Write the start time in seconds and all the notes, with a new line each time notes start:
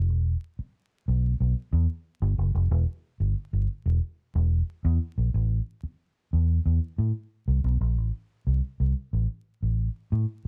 0.09 E1
0.59 muted fingered electric bass stroke
1.08 B1
1.40 B1
1.73 E2
2.22 G1
2.38 F#1
2.55 F1
2.71 E1
3.20 G1
3.53 G1
3.86 E1
4.35 E1
4.85 E2
5.18 A#1
5.34 A1
5.83 muted fingered electric bass stroke
6.33 E2
6.66 E2
6.98 A2
7.48 C2
7.64 B1
7.81 A#1
7.98 A1
8.47 C2
8.80 C2
9.13 A1
9.63 A1
10.12 A2